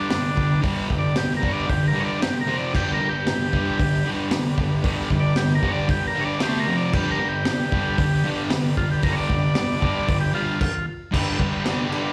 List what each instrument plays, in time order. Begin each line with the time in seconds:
Already playing: distorted electric guitar G3, transistor combo organ D4 G4 B4
0.10 distorted electric guitar G2 D3, snare, open hi-hat
0.36 distorted electric guitar G2 D3, kick
0.62 distorted electric guitar G2 D3 G3, kick, open hi-hat
0.89 distorted electric guitar G2 D3, kick
0.98 transistor combo organ D5
1.16 distorted electric guitar G2 D3, transistor combo organ G4, snare, open hi-hat
1.37 transistor combo organ A#4
1.41 distorted electric guitar G2 D3 G3, kick
1.48 transistor combo organ C#5 D5
1.67 distorted electric guitar G2 D3, transistor combo organ G4, kick, open hi-hat
1.87 transistor combo organ A#4
1.93 distorted electric guitar G2 D3 G3
2.00 transistor combo organ C#5
2.05 transistor combo organ D5
2.21 distorted electric guitar G2 D3, transistor combo organ G4, snare, open hi-hat
2.41 transistor combo organ A#4
2.47 distorted electric guitar F2 C3 F3
2.57 transistor combo organ D5
2.72 distorted electric guitar G2 D3 G3, transistor combo organ D4 G4, kick, crash
2.77 transistor combo organ B4
2.94 transistor combo organ A#4
3.00 distorted electric guitar G2 D3
3.09 transistor combo organ G4
3.26 distorted electric guitar G2 D3, snare, open hi-hat
3.52 distorted electric guitar G2 D3 G3, kick
3.79 distorted electric guitar G2 D3, kick, open hi-hat
4.05 distorted electric guitar G2 D3 G3
4.31 distorted electric guitar G2 D3, snare, open hi-hat
4.58 distorted electric guitar G2 D3, kick
4.83 distorted electric guitar G2 D3 G3, kick, open hi-hat
5.10 distorted electric guitar G2 D3, kick
5.20 transistor combo organ D5
5.36 distorted electric guitar G2 D3, transistor combo organ G4, snare, open hi-hat
5.55 transistor combo organ A#4
5.61 distorted electric guitar G2 D3 G3, kick
5.68 transistor combo organ C#5
5.72 transistor combo organ D5
5.88 distorted electric guitar G2 D3, transistor combo organ G4, kick, open hi-hat
6.08 transistor combo organ A#4
6.14 distorted electric guitar G2 D3 G3
6.21 transistor combo organ C#5
6.25 transistor combo organ D5
6.39 distorted electric guitar D3 A3 D4, transistor combo organ G4, snare, open hi-hat
6.60 transistor combo organ A#4
6.67 distorted electric guitar F2 C3 F3
6.77 transistor combo organ D5
6.91 distorted electric guitar G2 D3 G3, transistor combo organ D4 G4 B4, kick, crash
7.11 transistor combo organ A#4
7.19 distorted electric guitar G2 D3
7.29 transistor combo organ G4
7.45 distorted electric guitar G2 D3, snare, open hi-hat
7.72 distorted electric guitar G2 D3 G3, kick
7.98 distorted electric guitar G2 D3, kick, open hi-hat
8.24 distorted electric guitar G2 D3 G3
8.50 distorted electric guitar G2 D3, snare, open hi-hat
8.77 distorted electric guitar G2 D3, transistor combo organ F4, kick
8.91 transistor combo organ G4
9.03 distorted electric guitar G2 D3 G3, transistor combo organ A#4, kick, open hi-hat
9.12 transistor combo organ C#5
9.17 transistor combo organ D5
9.30 distorted electric guitar G2 D3, kick
9.55 distorted electric guitar G2 D3, snare, open hi-hat
9.81 distorted electric guitar G2 D3 G3, kick
10.07 distorted electric guitar G2 D3, kick, open hi-hat
10.21 transistor combo organ G4
10.33 distorted electric guitar G2 D3 G3, transistor combo organ F4
10.61 transistor combo organ F4, kick, crash
11.11 distorted electric guitar G2 D3 G3, transistor combo organ D4 G4 B4, kick, crash
11.38 distorted electric guitar G2 D3 G3, kick, crash
11.65 distorted electric guitar G2 D3 G3, snare, crash
11.89 distorted electric guitar G2 D3 G3, crash